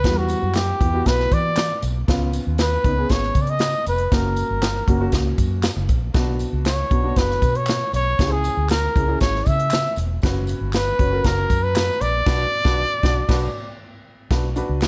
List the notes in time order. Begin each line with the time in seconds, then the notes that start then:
Already playing: B4
0.04 E2 B3 E4 F#4, kick, snare, closed hi-hat, tambourine
0.11 G3
0.18 F#4
0.29 closed hi-hat, tambourine
0.43 F#2
0.54 G4, snare, clap, closed hi-hat, tambourine
0.80 E2 B3 E4 G4, kick, closed hi-hat
0.93 B3 E4 F#4
1.06 B1 B4, kick, snare, closed hi-hat, tambourine
1.20 snare
1.32 E3 D5, kick, closed hi-hat, tambourine
1.56 snare, clap, closed hi-hat, tambourine
1.82 B1, closed hi-hat, tambourine
2.08 C#2 B3 C#4 F4, kick, snare, closed hi-hat
2.33 closed hi-hat, tambourine
2.47 D#2
2.58 B4, snare, clap, closed hi-hat, tambourine
2.84 C#2 B3 C#4 D#4, kick, closed hi-hat
2.97 B3 C#4 G#4
3.09 G#1 C#5, kick, snare, closed hi-hat, tambourine
3.23 snare
3.35 C#3, kick, closed hi-hat, tambourine
3.41 D5
3.47 D#5, closed hi-hat
3.59 snare, clap, closed hi-hat, tambourine
3.86 F1 B4, closed hi-hat, tambourine
3.98 closed hi-hat
4.12 F#1 A#3 C#4 F#4 A#4, kick, snare, closed hi-hat
4.36 closed hi-hat, tambourine
4.50 G1
4.62 snare, clap, closed hi-hat, tambourine
4.87 F#1 A#3 C#4 F#4, kick, closed hi-hat
5.00 A#3 C#4 F#4
5.12 C#2, kick, snare, closed hi-hat, tambourine
5.38 F#2, kick, closed hi-hat, tambourine
5.63 snare, clap, closed hi-hat, tambourine
5.76 F#1
5.89 A#1, kick, closed hi-hat, tambourine
6.14 B1 B3 D4 F#4, kick, snare, closed hi-hat
6.39 closed hi-hat, tambourine
6.53 C#2
6.65 C#5, snare, clap, closed hi-hat, tambourine
6.91 B1 B3 D4 F#4, kick, closed hi-hat
7.03 B3 D4 F#4
7.16 F#1 B4, kick, snare, closed hi-hat, tambourine
7.31 snare
7.42 B2, kick, closed hi-hat, tambourine
7.55 C#5, closed hi-hat
7.67 snare, clap, closed hi-hat, tambourine
7.93 B1 C#5, closed hi-hat, tambourine
8.19 C#2 C#4 E4 G4, kick, snare, closed hi-hat, tambourine
8.26 G#4
8.32 G#4
8.44 closed hi-hat, tambourine
8.57 D2
8.69 A#4, snare, clap, closed hi-hat, tambourine
8.95 C#2 C#4 E4 G#4, kick, closed hi-hat
9.07 C#4 E4 G#4
9.21 G#1 C#5, kick, snare, closed hi-hat, tambourine
9.35 snare
9.46 C#3 E5, kick, closed hi-hat, tambourine
9.59 closed hi-hat
9.71 snare, clap, closed hi-hat, tambourine
9.96 E1, closed hi-hat, tambourine
10.22 F#1 C#4 F#4 B4, kick, snare, closed hi-hat, tambourine
10.47 closed hi-hat, tambourine
10.61 G1
10.73 B4, snare, clap, closed hi-hat, tambourine
10.99 F#1 C#4 F#4 C#5, kick, closed hi-hat
11.11 C#4 F#4 A#4
11.24 F#1 C#4 F#4 A#4 A#5, kick, snare, closed hi-hat, tambourine
11.50 F#2, kick, closed hi-hat, tambourine
11.63 B4
11.76 snare, clap, closed hi-hat, tambourine
12.01 A#1 D5, closed hi-hat, tambourine
12.26 B1 D4 F#4 B4, kick, snare, crash
12.65 B1 D4 F#4 B4, kick, snare
13.03 B1 D4 F#4 D5, kick, snare
13.29 B1 D4 F#4 B4, kick, snare, crash
14.31 B1 D4 F#4 B4, kick, snare, closed hi-hat
14.56 D4 F#4 B4, closed hi-hat, tambourine
14.69 C#2
14.82 snare, clap, closed hi-hat, tambourine